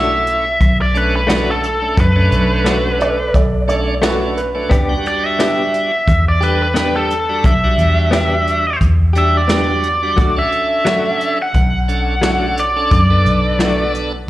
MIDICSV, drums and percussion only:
0, 0, Header, 1, 2, 480
1, 0, Start_track
1, 0, Key_signature, 2, "minor"
1, 0, Tempo, 683371
1, 1388, Time_signature, 4, 2, 24, 8
1, 10041, End_track
2, 0, Start_track
2, 0, Title_t, "Drums"
2, 188, Note_on_c, 9, 42, 61
2, 258, Note_off_c, 9, 42, 0
2, 426, Note_on_c, 9, 36, 79
2, 428, Note_on_c, 9, 42, 79
2, 496, Note_off_c, 9, 36, 0
2, 498, Note_off_c, 9, 42, 0
2, 669, Note_on_c, 9, 42, 56
2, 739, Note_off_c, 9, 42, 0
2, 908, Note_on_c, 9, 42, 82
2, 911, Note_on_c, 9, 38, 104
2, 979, Note_off_c, 9, 42, 0
2, 982, Note_off_c, 9, 38, 0
2, 1147, Note_on_c, 9, 42, 63
2, 1218, Note_off_c, 9, 42, 0
2, 1387, Note_on_c, 9, 36, 103
2, 1390, Note_on_c, 9, 42, 78
2, 1457, Note_off_c, 9, 36, 0
2, 1460, Note_off_c, 9, 42, 0
2, 1628, Note_on_c, 9, 42, 57
2, 1698, Note_off_c, 9, 42, 0
2, 1867, Note_on_c, 9, 42, 76
2, 1870, Note_on_c, 9, 38, 101
2, 1937, Note_off_c, 9, 42, 0
2, 1940, Note_off_c, 9, 38, 0
2, 2111, Note_on_c, 9, 42, 58
2, 2181, Note_off_c, 9, 42, 0
2, 2348, Note_on_c, 9, 36, 77
2, 2350, Note_on_c, 9, 42, 73
2, 2418, Note_off_c, 9, 36, 0
2, 2420, Note_off_c, 9, 42, 0
2, 2592, Note_on_c, 9, 42, 53
2, 2663, Note_off_c, 9, 42, 0
2, 2828, Note_on_c, 9, 42, 73
2, 2831, Note_on_c, 9, 38, 102
2, 2898, Note_off_c, 9, 42, 0
2, 2901, Note_off_c, 9, 38, 0
2, 3072, Note_on_c, 9, 42, 54
2, 3142, Note_off_c, 9, 42, 0
2, 3309, Note_on_c, 9, 36, 105
2, 3311, Note_on_c, 9, 42, 79
2, 3379, Note_off_c, 9, 36, 0
2, 3381, Note_off_c, 9, 42, 0
2, 3552, Note_on_c, 9, 42, 50
2, 3622, Note_off_c, 9, 42, 0
2, 3790, Note_on_c, 9, 42, 72
2, 3793, Note_on_c, 9, 38, 99
2, 3860, Note_off_c, 9, 42, 0
2, 3863, Note_off_c, 9, 38, 0
2, 4031, Note_on_c, 9, 42, 57
2, 4101, Note_off_c, 9, 42, 0
2, 4268, Note_on_c, 9, 36, 81
2, 4268, Note_on_c, 9, 42, 77
2, 4338, Note_off_c, 9, 36, 0
2, 4339, Note_off_c, 9, 42, 0
2, 4509, Note_on_c, 9, 42, 54
2, 4579, Note_off_c, 9, 42, 0
2, 4747, Note_on_c, 9, 42, 79
2, 4750, Note_on_c, 9, 38, 104
2, 4817, Note_off_c, 9, 42, 0
2, 4820, Note_off_c, 9, 38, 0
2, 4990, Note_on_c, 9, 42, 60
2, 5060, Note_off_c, 9, 42, 0
2, 5228, Note_on_c, 9, 36, 101
2, 5231, Note_on_c, 9, 42, 81
2, 5298, Note_off_c, 9, 36, 0
2, 5301, Note_off_c, 9, 42, 0
2, 5469, Note_on_c, 9, 42, 56
2, 5539, Note_off_c, 9, 42, 0
2, 5707, Note_on_c, 9, 42, 74
2, 5710, Note_on_c, 9, 38, 98
2, 5777, Note_off_c, 9, 42, 0
2, 5780, Note_off_c, 9, 38, 0
2, 5952, Note_on_c, 9, 42, 59
2, 6022, Note_off_c, 9, 42, 0
2, 6188, Note_on_c, 9, 36, 76
2, 6188, Note_on_c, 9, 42, 78
2, 6258, Note_off_c, 9, 36, 0
2, 6259, Note_off_c, 9, 42, 0
2, 6429, Note_on_c, 9, 42, 56
2, 6499, Note_off_c, 9, 42, 0
2, 6667, Note_on_c, 9, 42, 73
2, 6669, Note_on_c, 9, 38, 106
2, 6737, Note_off_c, 9, 42, 0
2, 6740, Note_off_c, 9, 38, 0
2, 6907, Note_on_c, 9, 42, 58
2, 6977, Note_off_c, 9, 42, 0
2, 7148, Note_on_c, 9, 42, 78
2, 7149, Note_on_c, 9, 36, 102
2, 7218, Note_off_c, 9, 42, 0
2, 7219, Note_off_c, 9, 36, 0
2, 7390, Note_on_c, 9, 42, 52
2, 7460, Note_off_c, 9, 42, 0
2, 7628, Note_on_c, 9, 42, 71
2, 7631, Note_on_c, 9, 38, 98
2, 7698, Note_off_c, 9, 42, 0
2, 7701, Note_off_c, 9, 38, 0
2, 7871, Note_on_c, 9, 42, 59
2, 7942, Note_off_c, 9, 42, 0
2, 8108, Note_on_c, 9, 42, 75
2, 8109, Note_on_c, 9, 36, 81
2, 8178, Note_off_c, 9, 42, 0
2, 8179, Note_off_c, 9, 36, 0
2, 8349, Note_on_c, 9, 42, 55
2, 8420, Note_off_c, 9, 42, 0
2, 8587, Note_on_c, 9, 42, 77
2, 8590, Note_on_c, 9, 38, 101
2, 8658, Note_off_c, 9, 42, 0
2, 8660, Note_off_c, 9, 38, 0
2, 8832, Note_on_c, 9, 42, 56
2, 8902, Note_off_c, 9, 42, 0
2, 9071, Note_on_c, 9, 36, 106
2, 9071, Note_on_c, 9, 42, 86
2, 9141, Note_off_c, 9, 36, 0
2, 9141, Note_off_c, 9, 42, 0
2, 9312, Note_on_c, 9, 42, 56
2, 9382, Note_off_c, 9, 42, 0
2, 9552, Note_on_c, 9, 42, 77
2, 9554, Note_on_c, 9, 38, 101
2, 9622, Note_off_c, 9, 42, 0
2, 9625, Note_off_c, 9, 38, 0
2, 9795, Note_on_c, 9, 42, 61
2, 9865, Note_off_c, 9, 42, 0
2, 10041, End_track
0, 0, End_of_file